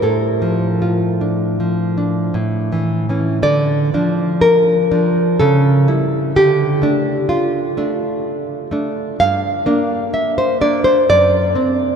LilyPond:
\new Staff \with { instrumentName = "Nylon-string guitar" } { \time 3/4 \key d \minor \tempo 4 = 63 << { a'2~ a'8 r8 | d''4 bes'4 a'4 | g'4 f'4. r8 | f''4 e''16 c''16 d''16 c''16 d''4 | } \\ { \tuplet 3/2 { a,8 f8 f'8 d'8 f8 d'8 a,8 e8 <e cis'>8 } | d8 <f d'>4 <f d'>8 cis8 <g e'>8 | d8 <a d'>4 <a d'>4 <a d'>8 | g,8 <bes d'>4 <bes d'>8 fis,8 <c' d'>8 | } >> }